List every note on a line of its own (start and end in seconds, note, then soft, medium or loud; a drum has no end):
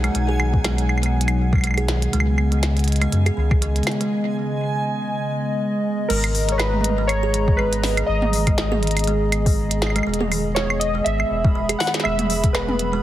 0.00 2.13 B2 medium
0.00 2.13 F#3 medium
0.00 0.13 G#3 loud
0.00 10.07 B3 medium
0.00 2.13 D#4 medium
0.00 3.56 F#5 medium
0.00 4.11 G#5 medium
0.00 closed hi-hat soft
0.00 claves medium
0.15 2.08 B1 loud
0.15 0.26 G#3 medium
0.15 closed hi-hat medium
0.29 0.39 G#4 loud
0.40 0.53 D#3 medium
0.40 claves medium
0.54 kick medium
0.64 0.75 G#3 loud
0.64 snare loud
0.64 closed hi-hat medium
0.64 claves medium
0.78 closed hi-hat soft
0.89 claves soft
0.98 claves soft
1.03 1.08 G#3 medium
1.03 closed hi-hat soft
1.03 claves soft
1.21 closed hi-hat medium
1.28 closed hi-hat soft
1.28 claves medium
1.53 1.61 G#3 loud
1.53 kick loud
1.53 claves soft
1.55 claves soft
1.58 claves soft
1.61 1.75 G#3 medium
1.61 closed hi-hat medium
1.61 claves soft
1.64 claves soft
1.67 claves soft
1.71 claves soft
1.74 1.88 G#4 loud
1.74 closed hi-hat soft
1.74 claves soft
1.78 claves medium
1.88 2.02 D#3 medium
1.88 snare loud
2.02 closed hi-hat soft
2.13 3.07 C#2 medium
2.13 6.10 C#3 medium
2.13 2.24 G#3 loud
2.13 closed hi-hat medium
2.20 claves medium
2.38 11.21 D#5 medium
2.38 claves medium
2.52 2.57 G#3 medium
2.52 10.07 G#3 medium
2.52 closed hi-hat soft
2.63 snare loud
2.63 closed hi-hat medium
2.63 claves medium
2.77 closed hi-hat soft
2.79 closed hi-hat soft
2.84 closed hi-hat soft
2.88 closed hi-hat soft
2.92 closed hi-hat soft
2.96 closed hi-hat soft
3.01 3.10 G#3 loud
3.01 closed hi-hat medium
3.01 claves medium
3.12 3.30 F#2 medium
3.12 3.23 G#3 medium
3.12 closed hi-hat medium
3.26 3.37 G#4 loud
3.26 closed hi-hat soft
3.26 claves medium
3.37 3.81 C#2 medium
3.37 3.50 D#3 medium
3.51 kick loud
3.51 claves medium
3.62 3.73 G#3 loud
3.62 closed hi-hat medium
3.76 closed hi-hat soft
3.83 snare loud
3.83 closed hi-hat soft
3.83 claves medium
3.91 closed hi-hat soft
4.01 4.06 G#3 medium
4.01 closed hi-hat soft
6.08 8.03 G#1 loud
6.08 6.21 G#3 loud
6.08 6.54 A#4 medium
6.08 crash loud
6.24 10.07 A#5 medium
6.24 closed hi-hat medium
6.24 claves medium
6.35 open hi-hat medium
6.41 13.03 G#4 medium
6.49 6.54 G#3 medium
6.49 6.59 C#5 medium
6.49 closed hi-hat medium
6.58 7.10 B4 medium
6.58 snare loud
6.58 claves medium
6.73 mid tom soft
6.81 closed hi-hat loud
6.81 mid tom medium
6.89 mid tom medium
6.98 7.07 G#3 loud
7.08 7.20 G#3 medium
7.08 7.59 C#5 loud
7.08 closed hi-hat medium
7.08 claves medium
7.23 7.33 G#4 loud
7.34 7.47 D#3 medium
7.34 closed hi-hat medium
7.48 kick loud
7.57 7.70 G#3 loud
7.57 8.09 B4 medium
7.57 claves medium
7.73 closed hi-hat loud
7.84 snare loud
7.84 open hi-hat medium
7.97 8.03 G#3 medium
7.97 closed hi-hat medium
7.97 claves medium
8.07 10.01 G#1 loud
8.07 9.52 D#5 loud
8.22 mid tom medium
8.33 open hi-hat medium
8.47 8.56 G#3 loud
8.47 kick medium
8.47 closed hi-hat medium
8.47 claves medium
8.58 8.69 G#3 medium
8.58 snare loud
8.72 8.82 G#4 loud
8.72 mid tom medium
8.83 8.96 D#3 medium
8.83 closed hi-hat soft
8.87 closed hi-hat medium
8.91 closed hi-hat medium
8.97 closed hi-hat medium
8.97 claves medium
8.99 closed hi-hat medium
9.04 9.18 G#3 loud
9.04 closed hi-hat medium
9.07 closed hi-hat medium
9.32 closed hi-hat medium
9.32 claves medium
9.46 9.51 G#3 medium
9.46 kick loud
9.46 open hi-hat medium
9.71 closed hi-hat loud
9.82 snare loud
9.82 claves soft
9.87 claves soft
9.90 claves soft
9.96 10.04 G#3 loud
9.96 closed hi-hat medium
9.96 claves soft
9.98 claves soft
10.03 11.00 E1 loud
10.03 10.18 G#3 medium
10.03 claves soft
10.14 closed hi-hat medium
10.21 10.31 G#4 loud
10.21 mid tom medium
10.31 10.45 D#3 medium
10.31 open hi-hat medium
10.31 claves medium
10.39 13.03 B3 medium
10.55 10.67 G#3 loud
10.55 10.81 C#5 medium
10.55 snare loud
10.70 claves medium
10.80 11.06 D#5 medium
10.80 closed hi-hat loud
10.95 11.00 G#3 medium
11.04 11.24 G#1 medium
11.04 11.75 E5 loud
11.04 closed hi-hat medium
11.20 claves medium
11.25 13.03 B5 medium
11.31 11.75 E1 medium
11.44 11.53 G#3 loud
11.44 kick loud
11.55 11.66 G#3 medium
11.69 11.80 G#4 loud
11.69 closed hi-hat medium
11.69 claves medium
11.79 11.93 D#3 medium
11.79 11.90 F#5 loud
11.79 snare loud
11.79 open hi-hat medium
11.87 snare medium
11.94 snare medium
11.94 closed hi-hat medium
12.00 12.50 E5 loud
12.00 snare medium
12.05 13.03 E1 loud
12.05 12.16 G#3 loud
12.05 claves medium
12.19 closed hi-hat medium
12.19 mid tom medium
12.30 open hi-hat medium
12.44 12.49 G#3 medium
12.44 kick medium
12.44 closed hi-hat medium
12.53 13.03 B4 medium
12.53 snare loud
12.53 claves medium
12.68 mid tom medium
12.79 closed hi-hat medium
12.93 13.02 G#3 loud